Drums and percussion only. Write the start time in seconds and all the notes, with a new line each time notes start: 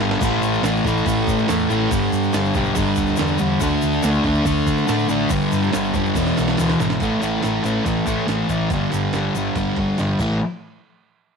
0.00 snare, open hi-hat
0.11 snare
0.21 kick, crash, shaker
0.42 open hi-hat, shaker
0.54 shaker
0.63 snare, open hi-hat, shaker
0.77 shaker
0.84 kick, open hi-hat, shaker
0.97 shaker
1.06 kick, open hi-hat, shaker
1.27 kick, open hi-hat, shaker
1.39 snare, shaker
1.48 snare, open hi-hat, shaker
1.59 shaker
1.70 open hi-hat, shaker
1.91 kick, open hi-hat, shaker
2.12 open hi-hat, shaker
2.23 shaker
2.33 snare, open hi-hat, shaker
2.45 shaker
2.54 kick, open hi-hat, shaker
2.65 shaker
2.75 kick, open hi-hat, shaker
2.96 kick, open hi-hat, shaker
3.07 snare, shaker
3.16 snare, open hi-hat, shaker
3.27 shaker
3.38 open hi-hat, shaker
3.61 kick, open hi-hat, shaker
3.82 open hi-hat, shaker
3.92 shaker
4.03 snare, open hi-hat, shaker
4.14 shaker
4.24 kick, open hi-hat
4.34 shaker
4.46 kick, open hi-hat, shaker
4.67 kick, open hi-hat, shaker
4.77 snare, shaker
4.88 snare, open hi-hat, shaker
4.99 shaker
5.09 open hi-hat, shaker
5.30 kick, open hi-hat, shaker
5.41 shaker
5.51 open hi-hat, shaker
5.63 shaker
5.73 snare, open hi-hat, shaker
5.84 shaker
5.94 kick, open hi-hat, shaker
6.05 shaker
6.15 kick, snare, open hi-hat, shaker
6.27 snare, shaker
6.37 snare, open hi-hat, shaker
6.48 snare, shaker
6.57 snare, open hi-hat, shaker
6.70 snare, shaker
6.79 snare, open hi-hat, shaker
6.90 snare, shaker
7.00 kick, ride, shaker
7.22 ride, shaker
7.43 snare, ride, shaker
7.64 ride, shaker
7.86 kick, ride, shaker
8.07 kick, ride, shaker
8.28 snare, ride, shaker
8.49 kick, ride, shaker
8.70 kick, ride, shaker
8.92 ride, shaker
9.13 snare, ride, shaker
9.35 ride, shaker
9.56 kick, ride, shaker
9.76 kick, ride
9.98 snare, ride, shaker
10.08 high tom
10.19 kick, crash, shaker